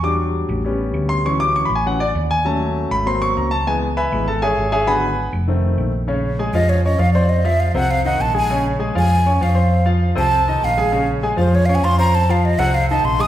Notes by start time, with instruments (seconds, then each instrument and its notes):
Already playing: fingered electric bass E2
0.03 grand piano F#3 G3 D4 D6
0.49 fingered electric bass A1
0.65 grand piano G3 B3 C#4
0.94 fingered electric bass D2
1.09 grand piano C6
1.25 grand piano E3 F#3 C#4 C#6
1.40 grand piano D6
1.56 grand piano C#6
1.65 grand piano B5
1.69 fingered electric bass A1
1.75 grand piano G#5
1.86 grand piano E3 F#3 C#4 F#5
2.00 grand piano D5
2.15 fingered electric bass D#2
2.31 grand piano G#5
2.45 grand piano F#3 A3 C#4 A5
2.91 fingered electric bass G#1, grand piano B5
3.06 grand piano F#3 A#3 C4 C6
3.22 grand piano C#6
3.37 fingered electric bass C#2, grand piano A#5
3.51 grand piano A5
3.66 grand piano E3 G#3 B3 G#5
3.97 grand piano B4 E5 G#5 B5
4.12 fingered electric bass G#1, grand piano E3 G#3 B3
4.28 grand piano A4 A5
4.42 grand piano G#4 C#5 E5 G#5
4.57 fingered electric bass G#1
4.72 grand piano G#4 C#5 E5 G#5
4.87 grand piano D3 F#3 B3 B4 F#5 G#5 B5
5.33 fingered electric bass F1
5.48 grand piano D#3 A3 C4
5.78 fingered electric bass A#1
6.08 grand piano C#3 C#4 C#5
6.39 grand piano G#3 G#4 G#5
6.53 fingered electric bass F2, grand piano F3 F4 F5, flute D#5
6.69 flute C#5
6.84 grand piano C#4 C#5 C#6, flute D#5
6.98 fingered electric bass F2, grand piano F3 F4 F5, flute F5
7.13 grand piano C4 C5 C6, flute D5
7.29 flute D#5
7.44 grand piano F3 F4 F5, flute E5
7.60 flute F5
7.74 fingered electric bass C2, grand piano C3 C4 C5, flute F#5
7.91 flute F5
8.05 grand piano D#3 D#4 D#5, flute F#5
8.20 fingered electric bass A#1, flute A5
8.34 grand piano G#3 G#4 G#5, flute G#5
8.50 grand piano C#3 C#4 C#5
8.79 grand piano G#3 G#4 G#5
8.95 fingered electric bass F2, grand piano F3 F4 F5, flute G#5
9.26 grand piano C#4 C#5 C#6
9.41 fingered electric bass F2, grand piano F3 F4 F5, flute F5
9.55 grand piano C4 C5 C6
9.86 grand piano F3 F4 F5
10.15 fingered electric bass C2, grand piano C3 C4 C5, flute A5
10.48 grand piano D#3 D#4 D#5
10.62 fingered electric bass A#1, flute F5
10.78 grand piano G#3 G#4 G#5
10.92 grand piano C#3 C#4 C#5
11.23 grand piano G#3 G#4 G#5
11.37 fingered electric bass F2, grand piano F3 F4 F5, flute C5
11.55 flute C#5
11.66 grand piano C#4 C#5 C#6, flute F5
11.75 flute G#5
11.82 fingered electric bass F2, grand piano F3 F4 F5, flute C6
11.99 grand piano C4 C5 C6, flute A#5
12.15 flute A5
12.29 grand piano F3 F4 F5, flute F5
12.45 flute D#5
12.58 fingered electric bass C2, grand piano C3 C4 C5, flute F#5
12.74 flute F5
12.90 grand piano D#3 D#4 D#5, flute A5
13.03 fingered electric bass A#1, flute C6
13.19 grand piano G#3 G#4 G#5, flute D#6